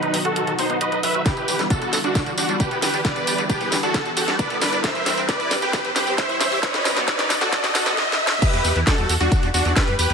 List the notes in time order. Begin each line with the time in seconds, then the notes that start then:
Already playing: B2 D#3 F#3 D#4 F#4 B4, riser
0.03 B1 D#4, closed hi-hat
0.14 B1 F#3, open hi-hat
0.25 B1 F#4 A4, closed hi-hat
0.36 D#3, closed hi-hat
0.47 B1 D#3, closed hi-hat
0.59 B1 C4 D#4 C5, open hi-hat
0.70 B1 B3, closed hi-hat
0.81 F#4 B4 D#5, closed hi-hat
0.92 B1 D#4, closed hi-hat
1.03 B1 F#3 B4 E5, open hi-hat
1.15 B1 F#4, closed hi-hat
1.26 D3 E3 G3 B3 E4 G4 B4, kick, snare, closed hi-hat, tambourine
1.37 E2 D3, closed hi-hat, tambourine
1.48 E2 G4, open hi-hat, tambourine
1.59 E2 G3, snare, closed hi-hat, tambourine
1.70 D4 F#4 A4, kick, closed hi-hat, tambourine
1.82 E2 B3, closed hi-hat, tambourine
1.93 E2 E3, snare, open hi-hat, tambourine
2.04 E2 D4 F#4, closed hi-hat
2.15 D3, kick, snare, closed hi-hat, tambourine
2.26 E2 D3, closed hi-hat, tambourine
2.38 E2 D4 F#4 G4, open hi-hat, tambourine
2.49 E2 G3, closed hi-hat, tambourine
2.60 D4 G4 B4, kick, closed hi-hat, tambourine
2.71 F#2 B3, closed hi-hat, tambourine
2.82 E2 E3 G4 B4, snare, open hi-hat, tambourine
2.94 E2 D4, open hi-hat, tambourine
3.05 D3 B4 D5, kick, snare, closed hi-hat, tambourine
3.16 E2 D3, closed hi-hat, tambourine
3.27 E2 G4, open hi-hat, tambourine
3.38 E2 G3, closed hi-hat, tambourine
3.50 D4 G4 B4, kick, closed hi-hat, tambourine
3.61 E2 B3, closed hi-hat, tambourine
3.72 E2 E3, snare, open hi-hat, tambourine
3.83 E2 D4 F#4 A4, closed hi-hat, tambourine
3.94 D3, kick, snare, closed hi-hat, tambourine
4.06 E2 D3, closed hi-hat, tambourine
4.17 E2 F#4 G4 A4, open hi-hat, tambourine
4.28 E2 G3, snare, closed hi-hat, tambourine
4.39 D4 B4 D5, kick, closed hi-hat, tambourine
4.50 F#2 B3, closed hi-hat, tambourine
4.61 E2 E3 B4 D5, snare, open hi-hat, tambourine
4.73 E2 D4, closed hi-hat, tambourine
4.84 C3 E3 G4 C5 E5, kick, snare, closed hi-hat, tambourine
4.95 C2 E3, closed hi-hat, tambourine
5.06 C2 C4, snare, open hi-hat, tambourine
5.17 C2 C4, closed hi-hat, tambourine
5.29 G4 B4 D5, kick, snare, closed hi-hat, tambourine
5.40 C2 E4, closed hi-hat, tambourine
5.51 C2 G3, snare, open hi-hat, tambourine
5.62 C2 G4 B4, closed hi-hat, tambourine
5.73 E3, kick, snare, closed hi-hat, tambourine
5.85 C2 E3, closed hi-hat, tambourine
5.96 C2 C4 G4 B4, snare, open hi-hat, tambourine
6.07 C2 C4, closed hi-hat, tambourine
6.18 G4 C5 E5, kick, snare, closed hi-hat, tambourine
6.29 D2 E4, closed hi-hat, tambourine
6.41 G3 C5 E5, snare, open hi-hat, tambourine
6.52 C2 G4, open hi-hat, tambourine
6.63 B2 D#3 F#3 D#4 F#4 B4 D#5, kick, snare, closed hi-hat, tambourine
6.74 D#3, snare, closed hi-hat, tambourine
6.85 C4, snare, open hi-hat, tambourine
6.97 B3, snare, closed hi-hat, tambourine
7.08 D#4 F#4 B4, kick, snare, closed hi-hat, tambourine
7.19 D#4, snare, closed hi-hat, tambourine
7.30 F#3, snare, open hi-hat, tambourine
7.41 F#4 A4, snare, closed hi-hat, tambourine
7.53 D#3, kick, snare, closed hi-hat, tambourine
7.64 D#3, snare, open hi-hat, tambourine
7.75 C4 F#4 A4, snare, open hi-hat, tambourine
7.86 B3, snare, closed hi-hat, tambourine
7.97 snare
8.12 snare
8.27 snare
8.42 D3 G4 B4, kick, closed hi-hat, crash, tambourine
8.53 E2 G3, closed hi-hat, tambourine
8.64 E2 B3, open hi-hat, tambourine
8.76 E2 E3, closed hi-hat, tambourine
8.87 D4 F#4 A4, kick, snare, closed hi-hat, tambourine
8.98 E2 G3, closed hi-hat, tambourine
9.09 E2 G4, open hi-hat, tambourine
9.20 E2 G3 D4 F#4, closed hi-hat, tambourine
9.32 D3, kick, closed hi-hat, tambourine
9.43 E2 G3, closed hi-hat, tambourine
9.54 E2 B3 D4 F#4, open hi-hat, tambourine
9.65 E2 E3, closed hi-hat, tambourine
9.76 D4 G4 B4, kick, snare, closed hi-hat, tambourine
9.88 F#2 G3, closed hi-hat, tambourine
9.99 E2 G4 B4, open hi-hat, tambourine
10.10 E2 G3, closed hi-hat, tambourine